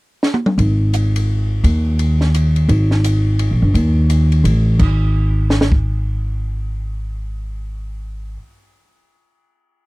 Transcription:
0.23 snare
0.34 high tom
0.46 mid tom
0.58 upright bass G#1, kick, ride
0.93 hi-hat pedal, ride
1.16 ride
1.64 upright bass D#2, kick, ride
1.99 ride
2.21 snare
2.34 hi-hat pedal, ride
2.56 ride
2.69 upright bass G#1, kick, ride
2.91 snare
3.04 hi-hat pedal, ride
3.39 ride
3.51 upright bass A#1
3.62 upright bass G1
3.74 upright bass D#2, kick, ride
4.10 hi-hat pedal, ride
4.32 ride
4.44 upright bass A1, ride
4.79 upright bass G#1, kick, crash
5.50 snare
5.61 snare
5.72 kick

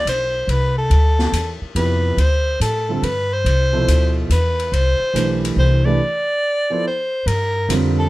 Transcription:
0.05 upright bass B1, soprano saxophone C5, hi-hat pedal, ride
0.47 upright bass C2, soprano saxophone B4, ride
0.78 soprano saxophone A4
0.90 upright bass D2, ride
1.19 snare
1.32 upright bass E2, hi-hat pedal, ride
1.61 muted upright bass stroke
1.75 upright bass F2, grand piano C3 F3 B3 E4 G4, soprano saxophone B4, ride
2.17 upright bass D2, soprano saxophone C5, ride
2.60 upright bass A2, soprano saxophone A4, hi-hat pedal, ride
2.89 grand piano D3 G3 C4 F4 A4
3.02 upright bass G2, soprano saxophone B4, ride
3.34 soprano saxophone C5
3.44 upright bass C2, ride
3.73 grand piano B2 F3 E4 A4 C5
3.88 upright bass D2, hi-hat pedal, ride
4.30 upright bass E2, soprano saxophone B4, hi-hat pedal, ride
4.59 ride
4.72 upright bass C2, soprano saxophone C5, ride
5.00 muted upright bass stroke
5.14 upright bass B1, grand piano E3 A3 D4 G4 B4, hi-hat pedal, ride
5.45 ride
5.56 upright bass C2, soprano saxophone C5
5.85 grand piano E3 A3 D4 G4 B4, soprano saxophone D5
6.70 grand piano F3 B3 E4 A4 C5
6.87 soprano saxophone C5
7.26 upright bass G2, soprano saxophone A#4, ride
7.69 upright bass F2, grand piano D3 G3 C4 F4 A#4, hi-hat pedal, ride
7.99 soprano saxophone A4

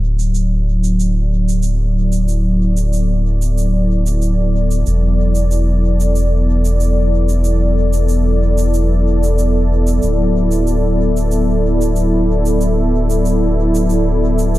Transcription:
Already playing: sub bass D1, analog synth pad F#3 B3 E4 A4 D5
0.19 shaker
0.35 shaker
0.84 shaker
1.00 shaker
1.49 shaker
1.63 shaker
2.13 shaker
2.28 shaker
2.77 shaker
2.93 shaker
3.42 shaker
3.58 shaker
4.07 shaker
4.22 shaker
4.71 shaker
4.87 sub bass E1, shaker
5.35 shaker
5.51 shaker
6.00 shaker
6.16 shaker
6.65 shaker
6.80 shaker
7.29 shaker
7.44 shaker
7.93 shaker
8.09 shaker
8.58 shaker
8.74 shaker
9.23 shaker
9.39 shaker
9.87 shaker
10.03 sub bass D1, analog synth pad F#3, shaker
10.52 shaker
10.67 shaker
11.17 shaker
11.31 shaker
11.82 shaker
11.96 shaker
12.46 shaker
12.61 shaker
13.10 shaker
13.26 shaker
13.75 shaker
13.90 shaker
14.39 shaker
14.55 shaker

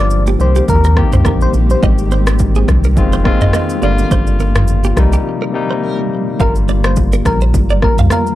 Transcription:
Already playing: sub bass G1, tine electric piano F3 A#3 D4 G4, ambient pad F3 G3 A#3 G4
0.00 soft synth lead D5
0.10 shaker
0.27 clean electric guitar G4, high conga, shaker
0.39 sub bass C2, tine electric piano D#3 A#3 C4 G4, ambient pad D#3 C4, soft synth lead C5, low conga, shaker
0.55 clean electric guitar G4, shaker
0.68 sub bass D#2, soft synth lead A#4, kick, low conga, shaker
0.84 clean electric guitar A#4, high conga, shaker
0.96 tine electric piano D3 A#3 C4 G4, kick, cross-stick, high conga
1.02 tine electric piano D#3
1.12 sub bass C2, clean electric guitar C5, mid tom, shaker
1.25 sub bass A#1, clean electric guitar A#4, kick, cross-stick, high conga, shaker
1.41 soft synth lead C5, shaker
1.53 sub bass A#1, high conga, shaker
1.70 soft synth lead C5, high conga, shaker
1.81 sub bass G#1, tine electric piano D#3 G#3 C4 G4, ambient pad D#3 G#3, clean electric guitar D#5, kick, low conga, shaker
1.98 shaker
2.11 clean electric guitar C5, high conga, shaker
2.27 cross-stick, shaker
2.39 kick, shaker
2.55 clean electric guitar G#4, high conga, shaker
2.68 sub bass C2, kick, cross-stick, low conga, shaker
2.84 clean electric guitar A#4, shaker
2.96 sub bass F1, tine electric piano D#3 G#3 C4 F4, ambient pad F3 F4, kick, low conga, shaker
3.13 clean electric guitar C5, high conga, shaker
3.24 tine electric piano D#3 G#3 C4 F4, kick, cross-stick, high conga
3.41 sub bass G#1, clean electric guitar D#5, mid tom, shaker
3.53 clean electric guitar D#5, cross-stick, high conga, shaker
3.69 shaker
3.81 sub bass G1, tine electric piano D3 G3 A#3 F4, ambient pad G3 A#3, clean electric guitar D5, high conga, shaker
3.98 clean electric guitar C5, high conga, shaker
4.11 sub bass G1, clean electric guitar C5, kick, low conga, shaker
4.27 shaker
4.40 clean electric guitar A#4, high conga, shaker
4.55 cross-stick, mid tom, shaker
4.67 shaker
4.84 clean electric guitar G4, high conga, shaker
4.96 sub bass C2, tine electric piano C3 G3 A#3 D#4, ambient pad C3 D#3 D#4, kick, cross-stick, low conga, shaker
5.13 clean electric guitar G4, shaker
5.42 clean electric guitar A#4
5.53 tine electric piano C3 G3 A#3 D#4
5.71 clean electric guitar C5
5.83 clean electric guitar A#4
6.39 sub bass G1, tine electric piano D3 G3 A#3 F4, ambient pad D3 F3 G3 A#3 F4, soft synth lead A#4, clean electric guitar F5, kick, low conga, shaker
6.56 shaker
6.68 clean electric guitar D5, high conga, shaker
6.84 soft synth lead C5, cross-stick, shaker
6.96 kick, shaker
7.12 clean electric guitar A#4, high conga, shaker
7.25 sub bass A#1, soft synth lead A#4, kick, cross-stick, low conga, shaker
7.41 clean electric guitar C5, shaker
7.54 sub bass G1, kick, shaker
7.70 clean electric guitar D5, shaker
7.82 soft synth lead A#4, kick, cross-stick, high conga
7.98 sub bass C2, clean electric guitar F5, mid tom, shaker
8.10 soft synth lead A#4, clean electric guitar F5, cross-stick, high conga, shaker
8.27 shaker

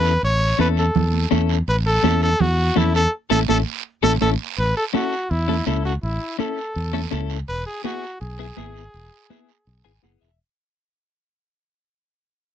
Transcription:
Already playing: fingered electric bass E2, clean electric guitar C#4 E4 A4, trumpet B4
0.05 short guiro
0.23 fingered electric bass A1, trumpet C#5, long guiro
0.59 fingered electric bass E2, clean electric guitar C#4 E4 A4, trumpet B4, high conga, short guiro
0.77 trumpet A4, short guiro
0.95 fingered electric bass E2, low conga, long guiro
1.14 high conga
1.31 fingered electric bass E2, clean electric guitar C#4 E4 A4, high conga, short guiro
1.49 short guiro
1.68 fingered electric bass A1, trumpet B4, long guiro
1.87 trumpet A4
2.04 fingered electric bass E2, clean electric guitar C#4 E4 A4, high conga, short guiro
2.22 trumpet A4, short guiro
2.40 fingered electric bass E2, trumpet F#4, low conga, long guiro
2.76 fingered electric bass E2, clean electric guitar C#4 E4 A4, trumpet E4, high conga, low conga, short guiro
2.94 trumpet A4, short guiro
3.30 fingered electric bass A1, clean electric guitar C#4 E4 A4, trumpet A4, high conga, long guiro
3.48 fingered electric bass A1, clean electric guitar C#4 E4 A4, trumpet A4, high conga, long guiro
4.03 fingered electric bass A1, clean electric guitar C#4 E4 A4, trumpet A4, high conga, long guiro
4.21 fingered electric bass A1, clean electric guitar C#4 E4 A4, trumpet A4, high conga, long guiro
4.58 fingered electric bass A1, trumpet B4, long guiro
4.77 trumpet A4
4.94 clean electric guitar C#4 E4 A4, trumpet F#4, high conga, short guiro
5.13 short guiro
5.30 fingered electric bass E2, trumpet E4, long guiro
5.48 clean electric guitar C#4 E4 A4, high conga
5.67 fingered electric bass C#2, clean electric guitar C#4 E4 A4, trumpet E4, high conga, short guiro
5.85 trumpet F#4, short guiro
6.03 fingered electric bass A1, trumpet E4, long guiro
6.39 clean electric guitar C#4 E4 A4, trumpet A4, high conga, short guiro
6.57 short guiro
6.76 fingered electric bass E2, long guiro
6.93 clean electric guitar C#4 E4 A4, high conga
7.11 fingered electric bass C#2, clean electric guitar C#4 E4 A4, high conga, short guiro
7.30 short guiro
7.48 fingered electric bass E1, trumpet B4, long guiro
7.66 trumpet G#4
7.84 clean electric guitar B3 E4 G#4, trumpet F#4, high conga, short guiro
8.03 short guiro
8.20 fingered electric bass B1, trumpet G#4, long guiro
8.39 clean electric guitar B3 E4 G#4
8.57 fingered electric bass G#1, clean electric guitar B3 E4 G#4, high conga, short guiro
8.76 short guiro
8.94 fingered electric bass E1, long guiro
9.30 clean electric guitar B3 E4 G#4, high conga, short guiro
9.49 short guiro
9.67 fingered electric bass B1, long guiro
9.85 fingered electric bass G#1, clean electric guitar B3 E4 G#4 G#5
10.02 fingered electric bass F#1, clean electric guitar B3 E4 G#4 F#5, high conga, short guiro
10.21 fingered electric bass E1, clean electric guitar E5, short guiro

